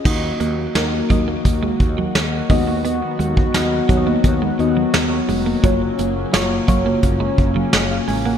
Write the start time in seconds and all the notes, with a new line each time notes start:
0.05 D#2 D#3 F#3 A#3 D#4 F#4 D#5, kick, crash
0.23 muted clean electric guitar stroke
0.40 D#2 A#3, closed hi-hat
0.75 D#2 A#3 D#4 F#4 A#4, muted clean electric guitar stroke, snare, closed hi-hat
1.10 D#2 F#3 A#3 D#4 F#4 D#5, kick, closed hi-hat
1.28 A#3
1.45 D#2, kick, closed hi-hat
1.63 G#3
1.80 D#2, muted clean electric guitar stroke, kick, closed hi-hat
1.98 F#3
2.15 D#2, muted clean electric guitar stroke, snare, closed hi-hat
2.49 D#2 G#3 B3 D#4 F#4 D#5, kick, open hi-hat
2.67 A#3
2.85 B3, closed hi-hat
3.02 muted clean electric guitar stroke
3.19 D#2 G#3, closed hi-hat
3.37 kick
3.54 D#2 B3 D#4 F#4 D#5, muted clean electric guitar stroke, snare, closed hi-hat
3.89 D#2 F#3 B3 D#4 F#4 C#5, kick, closed hi-hat
3.97 D#5
4.07 A#3
4.24 D#2, kick, closed hi-hat
4.42 G#3
4.59 D#2 B3 D#4 F#4 D#5, muted clean electric guitar stroke, closed hi-hat
4.77 F#3
4.94 D#2, muted clean electric guitar stroke, snare, closed hi-hat
5.29 F1 G#3, open hi-hat
5.46 A#3
5.63 F#1 C#3 F#3 A#3 C#4 F4 F#4 C#5, kick, closed hi-hat
5.82 muted clean electric guitar stroke
5.99 F#1 A#3, closed hi-hat
6.32 F#1 A#3 F4 F#4 C#5, muted clean electric guitar stroke, snare, closed hi-hat
6.68 F#1 F#3 A#3 F4 F#4 C#5, kick, closed hi-hat
6.86 A#3
7.03 F#1, kick, closed hi-hat
7.20 G#3
7.38 F#1, muted clean electric guitar stroke, kick, closed hi-hat
7.56 F#3
7.73 F#1, muted clean electric guitar stroke, snare, closed hi-hat
7.91 G#4 F5
8.08 A1 G#3 G#5, open hi-hat
8.25 A#3 A#4 F#5